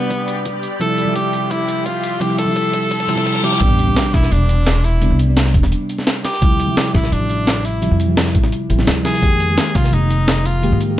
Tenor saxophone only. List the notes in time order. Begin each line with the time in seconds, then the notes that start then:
Already playing: B3
0.81 A4
1.16 G4
1.51 E4
1.86 F4
2.21 G4
2.38 A4
3.44 G4
4.14 E4
4.32 D4
4.84 E4
6.24 G4
6.95 E4
7.12 D4
7.65 E4
9.05 G#4
9.76 F4
9.93 D#4
10.46 F4